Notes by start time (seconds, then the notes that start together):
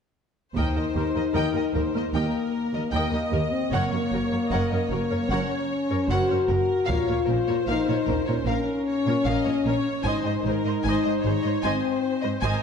0.56 D#2 D#4 A#4 C5 D#5 G5, taiko
0.75 D#2 A#4 D#5
0.95 D#2 G4 A#4
1.15 D#2 A#4 D#5
1.33 D#2 A#4 D#5 G5
1.54 D#2 A#4 D#5
1.74 D#2 G4 A#4 C5, taiko
1.94 D#2 A#4 D#5
2.13 D#2 A#3 A#4 D#5 G5
2.74 D#2 A#4 D#5
2.90 D#2 A#3 D#5 G5
2.94 A#4 D#5
3.13 D#2 A#4 D#5
3.32 D#2 G4 A#4
3.51 C4
3.72 F#1 F#2 A#3 A#4 C#5 F#5
3.92 F#2 A#4 C#5
4.11 F#1 F#2 F#4 A#4
4.31 F#2 A#4 C#5
4.51 F#1 F#2 A#4 C#5 D#5 F#5
4.71 F#2 A#4 C#5
4.90 F#1 F#2 F#4 A#4 C#5
5.10 F#2 A#4 C#5
5.29 F#1 F#2 C#4 A#4 C#5 F#5
5.90 F#2 A#4 C#5
6.09 F#1 F#2 F#4 A#4 C5 C#5 F#5
6.29 F#2 A#4 C#5
6.47 F#1 F#2 F#4 A#4
6.85 F4 A#4 F5, taiko
6.89 A#1 A#2 C#5
7.06 A#2 F4 A#4 C#5
7.25 A#1 A#2 A#4 C5
7.29 C#4 A#4
7.47 A#2 F4 A#4 C#5
7.67 A#1 A#2 D#4 A#4 F5
7.88 A#2 F4 A#4 C#5
8.05 A#1 A#2 C#4 A#4, taiko
8.26 A#2 C#4 F4 A#4 C#5
8.45 A#1 A#2 C#4 A#4 F5
8.87 C#5
9.06 A#2 F4 A#4 C#5
9.24 A#1 A#2 A#4 D#5 F5
9.44 A#2 F4 A#4 C#5
9.65 A#1 A#2 C#4 A#4 C#5
10.03 G#1 G#2 D#4 C5 D#5 G#5
10.24 G#2 C5 D#5
10.45 G#1 G#2 G#4 A#4 C5
10.64 G#2 C5 D#5
10.83 G#1 G#2 C5 G#5
10.87 D#5
11.04 G#2 C5 D#5
11.23 G#1 G#2 G#4 C5 C#5
11.42 G#2 D#5
11.46 C5
11.62 G#1 G#2 C4 C5 D#5 G#5
11.67 C5
12.21 G#2 C5 D#5
12.40 G#2 D#5 G#5
12.44 G#1 A#4 C5